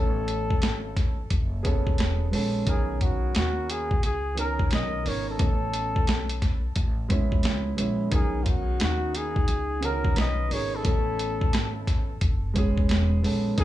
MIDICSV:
0, 0, Header, 1, 6, 480
1, 0, Start_track
1, 0, Tempo, 681818
1, 1878, Time_signature, 4, 2, 24, 8
1, 9604, End_track
2, 0, Start_track
2, 0, Title_t, "Flugelhorn"
2, 0, Program_c, 0, 56
2, 0, Note_on_c, 0, 69, 93
2, 845, Note_off_c, 0, 69, 0
2, 1894, Note_on_c, 0, 68, 83
2, 2129, Note_on_c, 0, 66, 73
2, 2140, Note_off_c, 0, 68, 0
2, 2364, Note_off_c, 0, 66, 0
2, 2370, Note_on_c, 0, 66, 89
2, 2611, Note_on_c, 0, 68, 83
2, 2621, Note_off_c, 0, 66, 0
2, 2845, Note_off_c, 0, 68, 0
2, 2851, Note_on_c, 0, 68, 98
2, 3068, Note_off_c, 0, 68, 0
2, 3091, Note_on_c, 0, 70, 92
2, 3308, Note_off_c, 0, 70, 0
2, 3339, Note_on_c, 0, 75, 95
2, 3578, Note_on_c, 0, 73, 92
2, 3588, Note_off_c, 0, 75, 0
2, 3725, Note_off_c, 0, 73, 0
2, 3730, Note_on_c, 0, 69, 89
2, 4655, Note_off_c, 0, 69, 0
2, 5734, Note_on_c, 0, 68, 82
2, 5938, Note_on_c, 0, 65, 58
2, 5949, Note_off_c, 0, 68, 0
2, 5974, Note_on_c, 0, 66, 72
2, 5985, Note_off_c, 0, 65, 0
2, 6206, Note_off_c, 0, 66, 0
2, 6221, Note_on_c, 0, 66, 86
2, 6453, Note_on_c, 0, 68, 93
2, 6464, Note_off_c, 0, 66, 0
2, 6935, Note_on_c, 0, 70, 88
2, 6946, Note_off_c, 0, 68, 0
2, 7167, Note_off_c, 0, 70, 0
2, 7176, Note_on_c, 0, 75, 94
2, 7413, Note_on_c, 0, 73, 95
2, 7424, Note_off_c, 0, 75, 0
2, 7571, Note_on_c, 0, 69, 94
2, 7582, Note_off_c, 0, 73, 0
2, 8523, Note_off_c, 0, 69, 0
2, 9570, Note_on_c, 0, 68, 101
2, 9604, Note_off_c, 0, 68, 0
2, 9604, End_track
3, 0, Start_track
3, 0, Title_t, "Clean electric guitar"
3, 0, Program_c, 1, 27
3, 5718, Note_on_c, 1, 63, 71
3, 5924, Note_off_c, 1, 63, 0
3, 5924, Note_on_c, 1, 61, 46
3, 5964, Note_off_c, 1, 61, 0
3, 5964, Note_on_c, 1, 63, 61
3, 6195, Note_off_c, 1, 63, 0
3, 6204, Note_on_c, 1, 63, 67
3, 6424, Note_off_c, 1, 63, 0
3, 6444, Note_on_c, 1, 63, 74
3, 6921, Note_off_c, 1, 63, 0
3, 6921, Note_on_c, 1, 66, 75
3, 7160, Note_off_c, 1, 66, 0
3, 7161, Note_on_c, 1, 71, 92
3, 7400, Note_off_c, 1, 71, 0
3, 7400, Note_on_c, 1, 70, 82
3, 7559, Note_off_c, 1, 70, 0
3, 7559, Note_on_c, 1, 64, 69
3, 8517, Note_off_c, 1, 64, 0
3, 9559, Note_on_c, 1, 63, 85
3, 9604, Note_off_c, 1, 63, 0
3, 9604, End_track
4, 0, Start_track
4, 0, Title_t, "Grand piano"
4, 0, Program_c, 2, 0
4, 0, Note_on_c, 2, 57, 76
4, 0, Note_on_c, 2, 59, 65
4, 0, Note_on_c, 2, 61, 65
4, 0, Note_on_c, 2, 69, 81
4, 791, Note_off_c, 2, 57, 0
4, 796, Note_off_c, 2, 59, 0
4, 800, Note_off_c, 2, 61, 0
4, 804, Note_off_c, 2, 69, 0
4, 1147, Note_on_c, 2, 68, 83
4, 1156, Note_on_c, 2, 59, 85
4, 1164, Note_on_c, 2, 61, 81
4, 1175, Note_on_c, 2, 69, 95
4, 1581, Note_off_c, 2, 68, 0
4, 1585, Note_off_c, 2, 59, 0
4, 1590, Note_off_c, 2, 61, 0
4, 1595, Note_off_c, 2, 69, 0
4, 1628, Note_on_c, 2, 56, 80
4, 1637, Note_on_c, 2, 59, 74
4, 1647, Note_on_c, 2, 61, 76
4, 1656, Note_on_c, 2, 69, 91
4, 1847, Note_off_c, 2, 56, 0
4, 1852, Note_off_c, 2, 59, 0
4, 1857, Note_off_c, 2, 61, 0
4, 1861, Note_off_c, 2, 69, 0
4, 1867, Note_on_c, 2, 51, 77
4, 1878, Note_on_c, 2, 59, 70
4, 1886, Note_on_c, 2, 61, 65
4, 1895, Note_on_c, 2, 70, 84
4, 2712, Note_off_c, 2, 51, 0
4, 2717, Note_off_c, 2, 59, 0
4, 2721, Note_off_c, 2, 61, 0
4, 2726, Note_off_c, 2, 70, 0
4, 3063, Note_on_c, 2, 51, 74
4, 3072, Note_on_c, 2, 59, 64
4, 3081, Note_on_c, 2, 61, 67
4, 3090, Note_on_c, 2, 70, 82
4, 3499, Note_off_c, 2, 51, 0
4, 3504, Note_off_c, 2, 59, 0
4, 3508, Note_off_c, 2, 61, 0
4, 3513, Note_off_c, 2, 70, 0
4, 3544, Note_on_c, 2, 51, 66
4, 3554, Note_on_c, 2, 59, 63
4, 3563, Note_on_c, 2, 61, 61
4, 3571, Note_on_c, 2, 70, 71
4, 3765, Note_off_c, 2, 51, 0
4, 3770, Note_off_c, 2, 59, 0
4, 3775, Note_off_c, 2, 61, 0
4, 3779, Note_off_c, 2, 70, 0
4, 3785, Note_on_c, 2, 57, 78
4, 3794, Note_on_c, 2, 59, 68
4, 3802, Note_on_c, 2, 61, 67
4, 3811, Note_on_c, 2, 69, 84
4, 4631, Note_off_c, 2, 57, 0
4, 4635, Note_off_c, 2, 59, 0
4, 4639, Note_off_c, 2, 61, 0
4, 4644, Note_off_c, 2, 69, 0
4, 4987, Note_on_c, 2, 56, 87
4, 4995, Note_on_c, 2, 59, 83
4, 5005, Note_on_c, 2, 61, 82
4, 5013, Note_on_c, 2, 64, 97
4, 5421, Note_off_c, 2, 56, 0
4, 5425, Note_off_c, 2, 59, 0
4, 5430, Note_off_c, 2, 61, 0
4, 5434, Note_off_c, 2, 64, 0
4, 5466, Note_on_c, 2, 56, 82
4, 5477, Note_on_c, 2, 59, 71
4, 5486, Note_on_c, 2, 61, 74
4, 5494, Note_on_c, 2, 64, 87
4, 5687, Note_off_c, 2, 56, 0
4, 5692, Note_off_c, 2, 59, 0
4, 5696, Note_off_c, 2, 61, 0
4, 5701, Note_off_c, 2, 64, 0
4, 5706, Note_on_c, 2, 51, 75
4, 5714, Note_on_c, 2, 59, 66
4, 5723, Note_on_c, 2, 61, 67
4, 5732, Note_on_c, 2, 70, 77
4, 6551, Note_off_c, 2, 51, 0
4, 6555, Note_off_c, 2, 59, 0
4, 6560, Note_off_c, 2, 61, 0
4, 6564, Note_off_c, 2, 70, 0
4, 6904, Note_on_c, 2, 49, 56
4, 6913, Note_on_c, 2, 59, 68
4, 6924, Note_on_c, 2, 61, 71
4, 6933, Note_on_c, 2, 70, 87
4, 6950, Note_on_c, 2, 51, 72
4, 6971, Note_off_c, 2, 49, 0
4, 7344, Note_off_c, 2, 59, 0
4, 7349, Note_off_c, 2, 61, 0
4, 7354, Note_off_c, 2, 70, 0
4, 7363, Note_off_c, 2, 51, 0
4, 7383, Note_on_c, 2, 51, 63
4, 7392, Note_on_c, 2, 59, 61
4, 7403, Note_on_c, 2, 61, 57
4, 7412, Note_on_c, 2, 68, 70
4, 7605, Note_off_c, 2, 51, 0
4, 7609, Note_off_c, 2, 59, 0
4, 7615, Note_off_c, 2, 61, 0
4, 7619, Note_off_c, 2, 68, 0
4, 7624, Note_on_c, 2, 57, 76
4, 7633, Note_on_c, 2, 59, 73
4, 7643, Note_on_c, 2, 61, 73
4, 7652, Note_on_c, 2, 69, 86
4, 8470, Note_off_c, 2, 57, 0
4, 8475, Note_off_c, 2, 59, 0
4, 8480, Note_off_c, 2, 61, 0
4, 8484, Note_off_c, 2, 69, 0
4, 8825, Note_on_c, 2, 56, 84
4, 8836, Note_on_c, 2, 59, 80
4, 8844, Note_on_c, 2, 61, 85
4, 8855, Note_on_c, 2, 68, 104
4, 9260, Note_off_c, 2, 56, 0
4, 9266, Note_off_c, 2, 59, 0
4, 9270, Note_off_c, 2, 61, 0
4, 9275, Note_off_c, 2, 68, 0
4, 9308, Note_on_c, 2, 56, 79
4, 9317, Note_on_c, 2, 59, 74
4, 9326, Note_on_c, 2, 61, 71
4, 9333, Note_on_c, 2, 69, 83
4, 9527, Note_off_c, 2, 56, 0
4, 9532, Note_off_c, 2, 59, 0
4, 9536, Note_off_c, 2, 61, 0
4, 9540, Note_off_c, 2, 69, 0
4, 9545, Note_on_c, 2, 51, 75
4, 9554, Note_on_c, 2, 59, 69
4, 9563, Note_on_c, 2, 61, 75
4, 9571, Note_on_c, 2, 70, 83
4, 9604, Note_off_c, 2, 51, 0
4, 9604, Note_off_c, 2, 59, 0
4, 9604, Note_off_c, 2, 61, 0
4, 9604, Note_off_c, 2, 70, 0
4, 9604, End_track
5, 0, Start_track
5, 0, Title_t, "Upright bass"
5, 0, Program_c, 3, 32
5, 0, Note_on_c, 3, 33, 104
5, 414, Note_off_c, 3, 33, 0
5, 438, Note_on_c, 3, 32, 88
5, 894, Note_off_c, 3, 32, 0
5, 920, Note_on_c, 3, 30, 88
5, 1375, Note_off_c, 3, 30, 0
5, 1397, Note_on_c, 3, 28, 88
5, 1625, Note_off_c, 3, 28, 0
5, 1638, Note_on_c, 3, 34, 81
5, 1866, Note_off_c, 3, 34, 0
5, 1879, Note_on_c, 3, 35, 107
5, 2335, Note_off_c, 3, 35, 0
5, 2359, Note_on_c, 3, 39, 91
5, 2815, Note_off_c, 3, 39, 0
5, 2842, Note_on_c, 3, 37, 87
5, 3296, Note_off_c, 3, 37, 0
5, 3324, Note_on_c, 3, 35, 99
5, 3549, Note_off_c, 3, 35, 0
5, 3561, Note_on_c, 3, 32, 84
5, 3788, Note_off_c, 3, 32, 0
5, 3799, Note_on_c, 3, 33, 105
5, 4254, Note_off_c, 3, 33, 0
5, 4279, Note_on_c, 3, 35, 77
5, 4735, Note_off_c, 3, 35, 0
5, 4760, Note_on_c, 3, 33, 99
5, 5215, Note_off_c, 3, 33, 0
5, 5236, Note_on_c, 3, 37, 96
5, 5465, Note_off_c, 3, 37, 0
5, 5480, Note_on_c, 3, 34, 81
5, 5707, Note_off_c, 3, 34, 0
5, 5717, Note_on_c, 3, 35, 108
5, 6174, Note_off_c, 3, 35, 0
5, 6199, Note_on_c, 3, 39, 88
5, 6655, Note_off_c, 3, 39, 0
5, 6677, Note_on_c, 3, 37, 94
5, 7134, Note_off_c, 3, 37, 0
5, 7158, Note_on_c, 3, 35, 95
5, 7386, Note_off_c, 3, 35, 0
5, 7400, Note_on_c, 3, 32, 85
5, 7627, Note_off_c, 3, 32, 0
5, 7637, Note_on_c, 3, 33, 107
5, 8094, Note_off_c, 3, 33, 0
5, 8119, Note_on_c, 3, 32, 96
5, 8574, Note_off_c, 3, 32, 0
5, 8600, Note_on_c, 3, 30, 84
5, 9055, Note_off_c, 3, 30, 0
5, 9078, Note_on_c, 3, 28, 94
5, 9306, Note_off_c, 3, 28, 0
5, 9318, Note_on_c, 3, 34, 79
5, 9546, Note_off_c, 3, 34, 0
5, 9560, Note_on_c, 3, 35, 98
5, 9604, Note_off_c, 3, 35, 0
5, 9604, End_track
6, 0, Start_track
6, 0, Title_t, "Drums"
6, 196, Note_on_c, 9, 42, 64
6, 267, Note_off_c, 9, 42, 0
6, 356, Note_on_c, 9, 36, 91
6, 426, Note_off_c, 9, 36, 0
6, 435, Note_on_c, 9, 42, 90
6, 445, Note_on_c, 9, 38, 107
6, 505, Note_off_c, 9, 42, 0
6, 515, Note_off_c, 9, 38, 0
6, 680, Note_on_c, 9, 36, 81
6, 681, Note_on_c, 9, 42, 71
6, 688, Note_on_c, 9, 38, 33
6, 750, Note_off_c, 9, 36, 0
6, 752, Note_off_c, 9, 42, 0
6, 758, Note_off_c, 9, 38, 0
6, 918, Note_on_c, 9, 42, 85
6, 920, Note_on_c, 9, 36, 77
6, 989, Note_off_c, 9, 42, 0
6, 990, Note_off_c, 9, 36, 0
6, 1160, Note_on_c, 9, 42, 69
6, 1162, Note_on_c, 9, 36, 88
6, 1230, Note_off_c, 9, 42, 0
6, 1233, Note_off_c, 9, 36, 0
6, 1314, Note_on_c, 9, 36, 89
6, 1385, Note_off_c, 9, 36, 0
6, 1395, Note_on_c, 9, 42, 72
6, 1410, Note_on_c, 9, 38, 95
6, 1465, Note_off_c, 9, 42, 0
6, 1481, Note_off_c, 9, 38, 0
6, 1641, Note_on_c, 9, 46, 53
6, 1712, Note_off_c, 9, 46, 0
6, 1877, Note_on_c, 9, 42, 89
6, 1879, Note_on_c, 9, 36, 104
6, 1948, Note_off_c, 9, 42, 0
6, 1949, Note_off_c, 9, 36, 0
6, 2118, Note_on_c, 9, 42, 68
6, 2120, Note_on_c, 9, 36, 80
6, 2189, Note_off_c, 9, 42, 0
6, 2190, Note_off_c, 9, 36, 0
6, 2356, Note_on_c, 9, 42, 89
6, 2366, Note_on_c, 9, 38, 111
6, 2427, Note_off_c, 9, 42, 0
6, 2437, Note_off_c, 9, 38, 0
6, 2602, Note_on_c, 9, 42, 68
6, 2672, Note_off_c, 9, 42, 0
6, 2752, Note_on_c, 9, 36, 94
6, 2823, Note_off_c, 9, 36, 0
6, 2838, Note_on_c, 9, 42, 90
6, 2908, Note_off_c, 9, 42, 0
6, 3080, Note_on_c, 9, 42, 68
6, 3150, Note_off_c, 9, 42, 0
6, 3234, Note_on_c, 9, 36, 85
6, 3305, Note_off_c, 9, 36, 0
6, 3313, Note_on_c, 9, 42, 80
6, 3329, Note_on_c, 9, 38, 97
6, 3384, Note_off_c, 9, 42, 0
6, 3399, Note_off_c, 9, 38, 0
6, 3560, Note_on_c, 9, 46, 50
6, 3631, Note_off_c, 9, 46, 0
6, 3797, Note_on_c, 9, 42, 89
6, 3799, Note_on_c, 9, 36, 106
6, 3867, Note_off_c, 9, 42, 0
6, 3869, Note_off_c, 9, 36, 0
6, 4038, Note_on_c, 9, 42, 66
6, 4108, Note_off_c, 9, 42, 0
6, 4196, Note_on_c, 9, 36, 92
6, 4266, Note_off_c, 9, 36, 0
6, 4276, Note_on_c, 9, 42, 91
6, 4286, Note_on_c, 9, 38, 107
6, 4346, Note_off_c, 9, 42, 0
6, 4356, Note_off_c, 9, 38, 0
6, 4431, Note_on_c, 9, 42, 59
6, 4502, Note_off_c, 9, 42, 0
6, 4520, Note_on_c, 9, 36, 81
6, 4520, Note_on_c, 9, 42, 70
6, 4527, Note_on_c, 9, 38, 33
6, 4590, Note_off_c, 9, 36, 0
6, 4591, Note_off_c, 9, 42, 0
6, 4597, Note_off_c, 9, 38, 0
6, 4756, Note_on_c, 9, 42, 91
6, 4759, Note_on_c, 9, 36, 76
6, 4827, Note_off_c, 9, 42, 0
6, 4830, Note_off_c, 9, 36, 0
6, 4998, Note_on_c, 9, 42, 73
6, 5001, Note_on_c, 9, 36, 79
6, 5069, Note_off_c, 9, 42, 0
6, 5072, Note_off_c, 9, 36, 0
6, 5153, Note_on_c, 9, 36, 86
6, 5223, Note_off_c, 9, 36, 0
6, 5231, Note_on_c, 9, 42, 75
6, 5247, Note_on_c, 9, 38, 103
6, 5302, Note_off_c, 9, 42, 0
6, 5317, Note_off_c, 9, 38, 0
6, 5478, Note_on_c, 9, 42, 74
6, 5548, Note_off_c, 9, 42, 0
6, 5713, Note_on_c, 9, 42, 85
6, 5717, Note_on_c, 9, 36, 107
6, 5784, Note_off_c, 9, 42, 0
6, 5788, Note_off_c, 9, 36, 0
6, 5954, Note_on_c, 9, 42, 62
6, 5958, Note_on_c, 9, 36, 79
6, 6025, Note_off_c, 9, 42, 0
6, 6028, Note_off_c, 9, 36, 0
6, 6194, Note_on_c, 9, 42, 91
6, 6204, Note_on_c, 9, 38, 107
6, 6265, Note_off_c, 9, 42, 0
6, 6275, Note_off_c, 9, 38, 0
6, 6439, Note_on_c, 9, 42, 65
6, 6509, Note_off_c, 9, 42, 0
6, 6590, Note_on_c, 9, 36, 92
6, 6660, Note_off_c, 9, 36, 0
6, 6672, Note_on_c, 9, 42, 87
6, 6743, Note_off_c, 9, 42, 0
6, 6917, Note_on_c, 9, 42, 68
6, 6987, Note_off_c, 9, 42, 0
6, 7072, Note_on_c, 9, 36, 87
6, 7143, Note_off_c, 9, 36, 0
6, 7154, Note_on_c, 9, 42, 75
6, 7169, Note_on_c, 9, 38, 102
6, 7224, Note_off_c, 9, 42, 0
6, 7239, Note_off_c, 9, 38, 0
6, 7400, Note_on_c, 9, 46, 54
6, 7470, Note_off_c, 9, 46, 0
6, 7636, Note_on_c, 9, 42, 91
6, 7638, Note_on_c, 9, 36, 103
6, 7706, Note_off_c, 9, 42, 0
6, 7708, Note_off_c, 9, 36, 0
6, 7880, Note_on_c, 9, 42, 60
6, 7951, Note_off_c, 9, 42, 0
6, 8035, Note_on_c, 9, 36, 91
6, 8106, Note_off_c, 9, 36, 0
6, 8118, Note_on_c, 9, 42, 99
6, 8128, Note_on_c, 9, 38, 104
6, 8189, Note_off_c, 9, 42, 0
6, 8199, Note_off_c, 9, 38, 0
6, 8360, Note_on_c, 9, 36, 79
6, 8362, Note_on_c, 9, 42, 68
6, 8368, Note_on_c, 9, 38, 30
6, 8430, Note_off_c, 9, 36, 0
6, 8432, Note_off_c, 9, 42, 0
6, 8438, Note_off_c, 9, 38, 0
6, 8598, Note_on_c, 9, 42, 81
6, 8599, Note_on_c, 9, 36, 81
6, 8668, Note_off_c, 9, 42, 0
6, 8670, Note_off_c, 9, 36, 0
6, 8840, Note_on_c, 9, 42, 69
6, 8842, Note_on_c, 9, 36, 87
6, 8910, Note_off_c, 9, 42, 0
6, 8912, Note_off_c, 9, 36, 0
6, 8994, Note_on_c, 9, 36, 84
6, 9064, Note_off_c, 9, 36, 0
6, 9075, Note_on_c, 9, 42, 77
6, 9091, Note_on_c, 9, 38, 98
6, 9146, Note_off_c, 9, 42, 0
6, 9161, Note_off_c, 9, 38, 0
6, 9324, Note_on_c, 9, 46, 50
6, 9394, Note_off_c, 9, 46, 0
6, 9558, Note_on_c, 9, 42, 91
6, 9560, Note_on_c, 9, 36, 105
6, 9604, Note_off_c, 9, 36, 0
6, 9604, Note_off_c, 9, 42, 0
6, 9604, End_track
0, 0, End_of_file